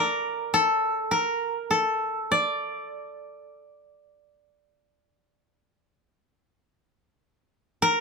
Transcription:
0.00 0.35 E4 soft
0.00 0.60 A#4 medium
0.00 1.50 D5 medium
0.54 1.17 A4 medium
1.11 1.77 A#4 medium
1.71 3.61 A4 medium
2.32 5.90 D5 medium
7.82 8.00 A#4 medium

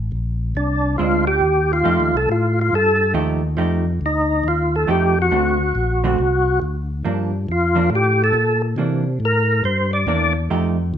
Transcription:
0.00 0.11 A1 medium
0.12 0.54 A#1 medium
0.55 0.97 C2 medium
0.55 0.97 D4 medium
0.98 1.41 D2 medium
0.98 1.25 G#3 soft
0.98 1.25 C4 medium
0.98 1.25 D4 medium
0.98 1.25 F4 medium
1.27 1.72 G4 loud
1.41 1.84 D#2 medium
1.73 2.16 F4 medium
1.84 1.99 F2 medium
1.84 2.10 F3 medium
1.84 2.11 A3 medium
1.84 2.11 D#4 medium
1.84 2.11 G4 medium
2.00 2.14 D#2 soft
2.14 2.27 C2 medium
2.14 2.29 A4 medium
2.29 2.71 A2 medium
2.29 2.59 F4 medium
2.61 2.74 F4 medium
2.72 3.14 G2 medium
2.72 3.14 A4 medium
3.14 3.57 D#2 medium
3.14 3.40 F3 medium
3.14 3.40 A3 medium
3.14 3.40 D#4 medium
3.14 3.41 G4 medium
3.57 3.99 F2 medium
3.57 3.83 F3 medium
3.57 3.84 A3 medium
3.57 3.84 D#4 medium
3.57 3.84 G4 medium
4.01 4.43 D2 medium
4.06 4.48 D#4 medium
4.44 4.86 D#2 medium
4.48 4.76 F4 medium
4.76 4.90 A4 medium
4.87 5.30 F2 medium
4.87 5.13 F3 medium
4.87 5.14 A3 medium
4.87 5.14 D#4 medium
4.87 5.14 G4 medium
4.87 5.19 G4 medium
5.22 6.60 F#4 medium
5.31 5.73 D2 medium
5.31 5.57 D3 soft
5.31 5.57 A3 medium
5.31 5.57 C4 soft
5.31 5.57 F#4 medium
5.75 6.17 A#1 medium
6.04 6.17 D3 medium
6.04 6.17 A3 medium
6.04 6.17 C4 medium
6.04 6.17 F#4 medium
6.19 6.60 C2 medium
6.62 7.03 D2 medium
7.05 7.47 G2 medium
7.05 7.30 F3 soft
7.05 7.30 A#3 medium
7.05 7.31 D4 medium
7.49 7.90 F2 medium
7.49 7.90 F4 medium
7.75 7.89 F3 medium
7.75 7.89 A#3 medium
7.75 7.89 D4 medium
7.90 8.33 A2 medium
7.95 8.22 G4 medium
8.24 8.62 A4 medium
8.33 8.76 A#2 medium
8.76 9.19 C3 medium
8.76 9.03 E3 soft
8.76 9.04 A#3 soft
8.76 9.04 D4 soft
9.20 9.62 A2 medium
9.25 9.63 A#4 medium
9.64 10.06 G2 medium
9.64 9.91 C5 medium
9.93 10.33 D5 loud
10.07 10.49 E2 medium
10.07 10.33 E3 medium
10.07 10.33 A#3 medium
10.07 10.33 D4 medium
10.50 10.93 F2 medium
10.50 10.76 F3 medium
10.50 10.76 A3 medium
10.50 10.76 D#4 medium
10.50 10.77 G4 medium
10.94 10.98 D#2 medium

